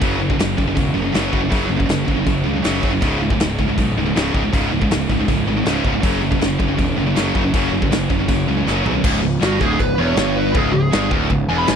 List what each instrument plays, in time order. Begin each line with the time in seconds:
0.02 picked electric bass F#1, distorted electric guitar F#2 C#3 F#3, kick, open hi-hat
0.20 distorted electric guitar F#2 C#3 F#3
0.30 distorted electric guitar F#2 C#3, kick
0.38 picked electric bass F#1, distorted electric guitar F#2 C#3 F#3, snare, open hi-hat
0.58 picked electric bass F#1, distorted electric guitar F#2 C#3 F#3, kick
0.67 distorted electric guitar F#2 C#3
0.75 picked electric bass E1, distorted electric guitar F#2 C#3 F#3, kick, open hi-hat
0.95 picked electric bass F#1, distorted electric guitar F#2 C#3 F#3
1.06 distorted electric guitar F#2 C#3
1.14 picked electric bass F#1, distorted electric guitar F#2 C#3 F#3, snare, open hi-hat
1.33 picked electric bass F#1, distorted electric guitar F#2 C#3 F#3, kick
1.42 distorted electric guitar F#2 C#3
1.50 picked electric bass F#1, distorted electric guitar F#2 C#3 F#3, kick, open hi-hat
1.70 picked electric bass F#1, distorted electric guitar F#2 C#3 F#3
1.79 distorted electric guitar F#2 C#3, kick
1.88 picked electric bass F#1, distorted electric guitar F#2 C#3 F#3, snare, open hi-hat
2.07 picked electric bass F#1, distorted electric guitar F#2 C#3 F#3, kick
2.17 distorted electric guitar F#2 C#3
2.26 picked electric bass F#1, distorted electric guitar F#2 C#3 F#3, kick, open hi-hat
2.45 picked electric bass C#2, distorted electric guitar F#2 C#3 F#3
2.56 distorted electric guitar F#2 C#3
2.64 picked electric bass F#1, distorted electric guitar F#2 C#3 F#3, snare, open hi-hat
2.83 picked electric bass F#1, distorted electric guitar F#2 C#3 F#3, kick
2.93 distorted electric guitar F#2 C#3
3.02 picked electric bass C#1, distorted electric guitar C#2 G#2 C#3, kick, open hi-hat
3.22 distorted electric guitar C#2 G#2 C#3
3.30 distorted electric guitar C#2 G#2, kick
3.40 picked electric bass C#1, distorted electric guitar C#2 G#2 C#3, snare, open hi-hat
3.59 picked electric bass C#1, distorted electric guitar C#2 G#2 C#3, kick
3.69 distorted electric guitar C#2 G#2
3.78 picked electric bass B1, distorted electric guitar C#2 G#2 C#3, kick, open hi-hat
3.96 picked electric bass C#1, distorted electric guitar C#2 G#2 C#3
4.06 distorted electric guitar C#2 G#2
4.15 picked electric bass C#1, distorted electric guitar C#2 G#2 C#3, snare, open hi-hat
4.34 picked electric bass C#1, distorted electric guitar C#2 G#2 C#3, kick
4.44 distorted electric guitar C#2 G#2
4.53 picked electric bass C#1, distorted electric guitar C#2 G#2 C#3, kick, open hi-hat
4.71 picked electric bass C#1, distorted electric guitar C#2 G#2 C#3
4.82 distorted electric guitar C#2 G#2, kick
4.91 picked electric bass C#1, distorted electric guitar C#2 G#2 C#3, snare, open hi-hat
5.09 picked electric bass C#1, distorted electric guitar C#2 G#2 C#3, kick
5.20 distorted electric guitar C#2 G#2
5.28 picked electric bass C#1, distorted electric guitar C#2 G#2 C#3, kick, open hi-hat
5.47 picked electric bass G#1, distorted electric guitar C#2 G#2 C#3
5.57 distorted electric guitar C#2 G#2
5.65 picked electric bass C#1, distorted electric guitar C#2 G#2 C#3, snare, open hi-hat
5.84 picked electric bass C#1, distorted electric guitar C#2 G#2 C#3, kick
5.94 distorted electric guitar C#2 G#2
6.03 picked electric bass F#1, distorted electric guitar F#2 C#3 F#3, kick, open hi-hat
6.21 distorted electric guitar F#2 C#3 F#3
6.31 distorted electric guitar F#2 C#3, kick
6.40 picked electric bass F#1, distorted electric guitar F#2 C#3 F#3, snare, open hi-hat
6.58 picked electric bass F#1, distorted electric guitar F#2 C#3 F#3, kick
6.69 distorted electric guitar F#2 C#3
6.78 picked electric bass E1, distorted electric guitar F#2 C#3 F#3, kick, open hi-hat
6.97 picked electric bass F#1, distorted electric guitar F#2 C#3 F#3
7.06 distorted electric guitar F#2 C#3
7.16 picked electric bass F#1, distorted electric guitar F#2 C#3 F#3, snare, open hi-hat
7.35 picked electric bass F#1, distorted electric guitar F#2 C#3 F#3, kick
7.45 distorted electric guitar F#2 C#3
7.54 picked electric bass F#1, distorted electric guitar F#2 C#3 F#3, kick, open hi-hat
7.72 picked electric bass F#1, distorted electric guitar F#2 C#3 F#3
7.82 distorted electric guitar F#2 C#3, kick
7.91 picked electric bass F#1, distorted electric guitar F#2 C#3 F#3, snare, open hi-hat
8.10 picked electric bass F#1, distorted electric guitar F#2 C#3 F#3, kick
8.20 distorted electric guitar F#2 C#3
8.28 picked electric bass F#1, distorted electric guitar F#2 C#3 F#3, kick, open hi-hat
8.46 picked electric bass C#2, distorted electric guitar F#2 C#3 F#3
8.58 distorted electric guitar F#2 C#3
8.66 picked electric bass F#1, distorted electric guitar F#2 C#3 F#3, snare
8.85 picked electric bass B1, distorted electric guitar F#2 C#3 F#3, floor tom
8.96 distorted electric guitar F#2 C#3
9.04 picked electric bass C#1, distorted electric guitar C#2, kick, crash, china
9.22 picked electric bass C#1, distorted electric guitar C#2
9.41 picked electric bass G1, distorted electric guitar G2, lead electric guitar F#4, snare, china
9.60 picked electric bass D1, distorted electric guitar D2, lead electric guitar G#4, kick
9.79 picked electric bass C#1, distorted electric guitar C#2, lead electric guitar B4, kick, china
9.98 picked electric bass E1, distorted electric guitar E2, lead electric guitar C#5
10.16 picked electric bass G1, distorted electric guitar G2, snare, china
10.37 lead electric guitar B4
10.55 picked electric bass C#1, distorted electric guitar C#2, lead electric guitar G#4, kick, china
10.73 picked electric bass C#1, distorted electric guitar C#2, lead electric guitar G#4
10.92 picked electric bass G1, distorted electric guitar G2, snare, china
11.11 picked electric bass D1, distorted electric guitar D2, kick
11.30 picked electric bass C#1, distorted electric guitar C#2, kick, china
11.48 picked electric bass E1, distorted electric guitar E2, lead electric guitar G#5
11.58 lead electric guitar B5
11.67 picked electric bass G1, distorted electric guitar G2, lead electric guitar G#5, snare, china